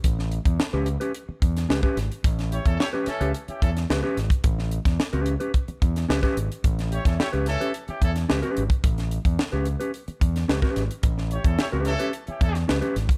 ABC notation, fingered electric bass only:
X:1
M:4/4
L:1/16
Q:1/4=109
K:Amix
V:1 name="Fingered electric bass" clef=bass
A,,,3 E,, z C,,2 z3 E,,2 C,, z ^G,,, z | A,,,3 E,, z3 C,, z2 E,,2 C,, z ^G,,, z | A,,,3 E,, z C,,2 z3 E,,2 C,, z ^G,,, z | A,,,3 E,, z C,,2 z3 E,,2 C,, z ^G,,, z |
A,,,3 E,, z C,,2 z3 E,,2 C,, z ^G,,, z | A,,,3 E,, z C,,2 z3 E,,2 C,, z ^G,,, z |]